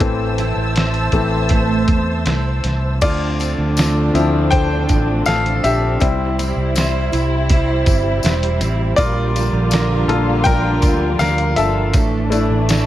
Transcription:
0.00 A1 A2 E3 A3 C4 C5 E5 A5 E6, kick, closed hi-hat
0.38 C4 E4 A4, closed hi-hat
0.56 A1
0.76 E4, snare, closed hi-hat
0.94 closed hi-hat
1.12 A1 E3 A3 C4 E4 A4, kick, closed hi-hat
1.49 A3, kick, closed hi-hat
1.88 E2, kick, closed hi-hat
2.26 C2 C4 E4 A4, snare, closed hi-hat
2.64 C2, snare, closed hi-hat
3.01 D2 D3 F3 A3 C4 D4 F4 A4 D5, kick, closed hi-hat, crash, tambourine
3.39 C4, closed hi-hat, tambourine
3.58 D2
3.77 C4 F4 A4, snare, closed hi-hat, tambourine
4.14 D2 F3 C4 E4 F4, closed hi-hat, tambourine
4.51 C4 F4 A4 C5 G5, kick, closed hi-hat
4.89 A1, kick, closed hi-hat, tambourine
5.26 A1 C4 F4 A4 F5, snare, closed hi-hat, tambourine
5.46 closed hi-hat
5.64 A#1 C4 G4 E5, closed hi-hat, tambourine
6.00 C2 C3 G3 C4 E4 C5, kick, closed hi-hat, tambourine
6.39 C4, closed hi-hat, tambourine
6.56 C2
6.75 C4 E4 C5, snare, closed hi-hat, tambourine
7.12 C2 E4, closed hi-hat, tambourine
7.49 C4 E4 C5, kick, closed hi-hat, tambourine
7.86 G1, kick, closed hi-hat, tambourine
8.23 E1 C4 E4 C5, snare, closed hi-hat, tambourine
8.43 closed hi-hat
8.61 A1 C4, closed hi-hat, tambourine
8.96 A#1 A#2 D3 F3 A#3 F4 A#4 D5, kick, closed hi-hat, tambourine
9.36 D4, closed hi-hat, tambourine
9.53 A#1
9.71 D4 F4 A#4, snare, closed hi-hat, tambourine
10.08 A#1 A#3 F4 A4, closed hi-hat
10.44 D4 F4 A#4 G5, kick, closed hi-hat, tambourine
10.48 A#4
10.82 D2, kick, closed hi-hat, tambourine
11.19 D2 D4 F4 A#4 F5, snare, closed hi-hat, tambourine
11.38 closed hi-hat
11.56 G1 D4 A4 E5, closed hi-hat, tambourine
11.93 A1 A2 E3 A3 D4 A4, kick, closed hi-hat, tambourine
12.30 A3 D4 E4, closed hi-hat, tambourine
12.50 A1
12.69 D4 E4 A4, snare, closed hi-hat, tambourine

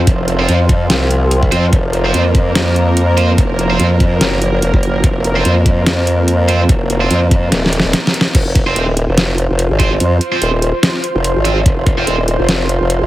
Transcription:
Already playing: F3 C4 F4
0.07 F1, kick, closed hi-hat
0.28 closed hi-hat
0.39 C4 F4 C5
0.49 F2, closed hi-hat
0.69 kick, closed hi-hat
0.90 C2, snare, closed hi-hat
1.11 closed hi-hat
1.31 closed hi-hat
1.43 kick
1.52 F2 C4 F4 C5, closed hi-hat
1.73 F1 A#3 A#4, kick, closed hi-hat
1.93 closed hi-hat
2.05 C4 F4 C5
2.14 F2, closed hi-hat
2.35 kick, closed hi-hat
2.55 F2, snare, closed hi-hat
2.76 closed hi-hat
2.97 closed hi-hat
3.17 C4 F4 C5, closed hi-hat
3.38 F1, kick, closed hi-hat
3.59 closed hi-hat
3.70 C4 F4 C5
3.80 F2, closed hi-hat
4.00 kick, closed hi-hat
4.21 F#1, snare, closed hi-hat
4.42 closed hi-hat
4.62 F1, closed hi-hat
4.74 F#1, kick
4.83 closed hi-hat
5.04 F1, kick, closed hi-hat
5.24 closed hi-hat
5.36 C4 F4 C5
5.45 F2, closed hi-hat
5.66 kick, closed hi-hat
5.86 F2, snare, closed hi-hat
6.07 closed hi-hat
6.28 closed hi-hat
6.48 C4 F4 C5, closed hi-hat
6.69 F1, kick, closed hi-hat
6.90 closed hi-hat
7.01 C4 F4 C5
7.11 F2, closed hi-hat
7.31 kick, closed hi-hat
7.52 D#1, snare, closed hi-hat
7.66 snare
7.73 closed hi-hat
7.80 snare
7.84 D#1
7.93 snare, closed hi-hat
8.07 snare
8.14 closed hi-hat
8.21 snare
8.35 F1 F4, kick, closed hi-hat, crash
8.46 C5
8.55 kick, closed hi-hat
8.66 C4 F4 C5
8.76 D#1, closed hi-hat
8.81 C6
8.97 closed hi-hat
9.08 F1
9.18 snare, closed hi-hat
9.38 closed hi-hat
9.50 F1
9.59 closed hi-hat
9.70 G#1
9.79 C4 F4 C5, kick, closed hi-hat
10.00 F2, closed hi-hat
10.21 closed hi-hat
10.32 C4 F4 C5
10.42 D#1, closed hi-hat
10.62 closed hi-hat
10.83 snare, closed hi-hat
11.04 closed hi-hat
11.15 F1
11.24 closed hi-hat
11.36 G#1
11.45 C4 F4 C5, closed hi-hat
11.66 F1, kick, closed hi-hat
11.87 kick, closed hi-hat
11.98 C4 F4 C5
12.07 D#1, closed hi-hat
12.28 closed hi-hat
12.39 F1
12.49 snare, closed hi-hat
12.69 closed hi-hat
12.81 F1
12.90 closed hi-hat
13.01 G#1

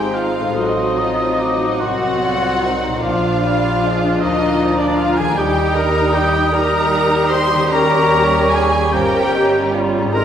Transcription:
Already playing: G#1 G#2 F3 G#3 C4 D#4 G4 G#4 D#5 G5 C6
0.15 F4 F5
0.40 A2
0.45 C4
0.49 F#4
0.53 A1 F#3 D#4 D#5 C6
0.57 F#3 C4 D#4 F#4 D#5
0.98 F4 D#6
1.39 F#4 D6
1.79 C2 D#3 F#3 C4 F#4 F#5 C6
2.22 D3 F4
2.63 D#3 D#4
2.87 A#2
2.91 A#3
2.96 F4
3.00 A#1 F3 D4 D5 F5
3.04 A#2 F3 D4 F4 F5
3.44 G3
3.85 G#3
4.21 D2 A#3 D#4 F4 D#5 A#5
4.78 D4 D5
4.97 F4 F5
5.17 D#3 G#4 G#5
5.24 A#3
5.29 G4
5.33 D#2 G4 D#5 G5
5.37 G3 D#4 G4 G5 D#6
5.75 A#4 A#5
6.12 G4 G5
6.52 G3 D#4 G4 A#4 A#5
7.29 C5 C6
7.54 D#3
7.59 C#4
7.64 G4
7.68 G3 C#4 A#4 D#5 A#5
7.72 D#2 G3 C#4 A#4 A#5 C#6
8.50 G#4 G#5
8.91 G1 F3 G3 C#4 G4 A#4 G5 A#5
8.95 G3
9.32 D#3 G4
9.74 G3 F4
9.98 G#2 C4
10.07 G#4
10.12 G#1 G#3 C4 D#4 A#4 D#5 A#5 C6
10.16 G#3 A#4

